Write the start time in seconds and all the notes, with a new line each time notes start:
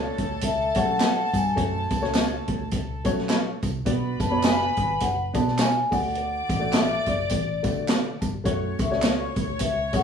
Already playing: A3 C#4 F#4 A4 C#5 A5
0.18 D2, kick, closed hi-hat
0.41 C#2 E5, kick, closed hi-hat, tambourine
0.75 F#3 G#3 C#4 F#4 C#5 F#5, kick, closed hi-hat, tambourine
0.82 A3
0.99 snare, clap, closed hi-hat, tambourine
1.34 G2 G#5, kick, closed hi-hat, tambourine
1.56 F#2 A3 C#4 F#4 C#5, kick, closed hi-hat
1.90 C#2, kick, closed hi-hat, tambourine
2.01 A3 C#4 F#4 C#5, snare
2.14 snare, clap, closed hi-hat, tambourine
2.48 D2, kick, closed hi-hat
2.71 C#2, kick, closed hi-hat, tambourine
3.04 F#3 A3 C#4 F#4 C#5, kick, closed hi-hat, tambourine
3.18 snare
3.29 snare, clap, closed hi-hat, tambourine
3.62 C2, kick, closed hi-hat, tambourine
3.85 B1 B3 D4 F#4 B4 D5 B5, kick, closed hi-hat
4.20 F#1 A5, kick, closed hi-hat, tambourine
4.30 B3 D4 F#4 C#5 B5
4.38 D5
4.43 G#5, snare, clap, closed hi-hat, tambourine
4.77 G#1, kick, closed hi-hat
5.00 F#1 F#5, kick, closed hi-hat, tambourine
5.33 B2 B3 D4 F#4 D5 A5, kick, closed hi-hat, tambourine
5.48 snare
5.58 G#5, snare, clap, closed hi-hat, tambourine
5.91 D2 A3 D4 F#4 D5 F#5 D6, kick, open hi-hat, tambourine
6.15 closed hi-hat
6.49 A1, kick, closed hi-hat, tambourine
6.60 A3 D4 F#4 D5
6.73 E5, snare, clap, closed hi-hat, tambourine
7.06 F#1 D5, kick, closed hi-hat, tambourine
7.29 A1, kick, closed hi-hat, tambourine
7.63 D3 A3 D4 F#4 D5, kick, closed hi-hat, tambourine
7.87 F#5, snare, clap, closed hi-hat, tambourine
8.21 G1 A5, kick, closed hi-hat, tambourine
8.44 F#2 A3 C#4 F#4 C#5 C#6, kick, closed hi-hat, tambourine
8.79 C#2 E5, kick, closed hi-hat, tambourine
8.90 A3 C#4 F#4 C#5 D5, snare
9.02 C#5, snare, clap, closed hi-hat, tambourine
9.36 D2, kick, closed hi-hat, tambourine
9.59 C#2 E5, kick, closed hi-hat, tambourine
9.93 F#3 G#3 C#4 F#4 C#5 F#5, kick, closed hi-hat, tambourine
9.99 A3